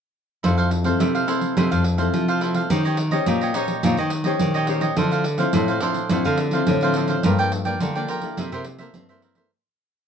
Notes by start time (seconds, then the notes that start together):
0.43 F2 F3 C4 E4 A4 C5 F5, pandeiro
0.57 A4 C5 F5, pandeiro
0.71 muted cavaquinho stroke, pandeiro
0.84 C4 E4 A4 C5 F5, pandeiro
0.99 C3 E4 A4 C5 F5, pandeiro
1.15 A4 C5 F5, pandeiro
1.28 C4 E4 A4 C5 F5, pandeiro
1.41 pandeiro
1.56 C3 F3 C4 E4 A4 C5 F5, pandeiro
1.71 F2 A4 C5 F5, pandeiro
1.84 muted cavaquinho stroke, pandeiro
1.98 C4 E4 A4 C5 F5, pandeiro
2.14 C3 F3, pandeiro
2.28 A4 C5 F5, pandeiro
2.41 C4 E4 A4 C5 F5, pandeiro
2.54 A4 C5 F5, pandeiro
2.70 D#3 C#4 D#4 G4 C5 C#5 D#5, pandeiro
2.85 G4 C#5 D#5, pandeiro
2.97 muted cavaquinho stroke, pandeiro
3.11 C#4 G4 C5 C#5 D#5, pandeiro
3.26 A#2 D#4 G4 C#5 D#5, pandeiro
3.41 G4 C#5 D#5, pandeiro
3.54 C#4 D#4 G4 C5 C#5 D#5, pandeiro
3.68 pandeiro
3.83 A#2 D#3 C#4 D#4 G4 C5 C#5 D#5, pandeiro
3.97 D#3 G4 C#5 D#5, pandeiro
4.10 muted cavaquinho stroke, pandeiro
4.24 C#4 G4 C5 C#5 D#5, pandeiro
4.39 A#2 D#3, pandeiro
4.54 G4 C#5 D#5, pandeiro
4.67 C#4 D#4 G4 C5 C#5 D#5, pandeiro
4.81 G4 C#5 D#5, pandeiro
4.96 D3 F3 C4 D4 E4 A4 C5 F5, pandeiro
5.11 A4 C5 F5, pandeiro
5.24 muted cavaquinho stroke, pandeiro
5.38 F3 C4 E4 A4 C5 F5, pandeiro
5.53 A2 D4 A4 C5 F5, pandeiro
5.68 A4 C5 F5, pandeiro
5.80 F3 C4 D4 E4 A4 C5 F5, pandeiro
5.94 pandeiro
6.09 A2 D3 F3 C4 D4 E4 A4 C5 F5, pandeiro
6.25 D3 A4 C5 F5, pandeiro
6.38 muted cavaquinho stroke, pandeiro
6.51 F3 C4 E4 A4 C5 F5, pandeiro
6.67 A2 D3, pandeiro
6.81 F3 C4 E4 A4 C5 F5, pandeiro
6.94 D4 A4 C5 F5, pandeiro
7.08 A4 C5 F5, pandeiro
7.23 G2 F3 A#3 D4 F4 A#4 D5 G5, pandeiro
7.38 A#4 D5 G5, pandeiro
7.52 muted cavaquinho stroke, pandeiro
7.65 F3 A#3 D4 A#4 D5 G5, pandeiro
7.80 D3 F4 A#4 D5 G5, pandeiro
7.95 F3 A#3 D4 A#4 D5 G5, pandeiro
8.08 F4 A#4 D5 G5, pandeiro
8.22 A#3 E4 A4, pandeiro
8.37 C3 E4 A#4 C5 E5, pandeiro
8.52 C3 A#4 C5 E5, pandeiro
8.65 muted cavaquinho stroke, pandeiro
8.78 A#3 E4 A4 A#4 C5 E5, pandeiro
8.94 G2 C4, pandeiro
9.09 A#3 E4 A4 A#4 C5 E5, pandeiro
9.22 E4 A#4 C5 E5, pandeiro
9.35 A#3 E4 A4 A#4 C5 E5, pandeiro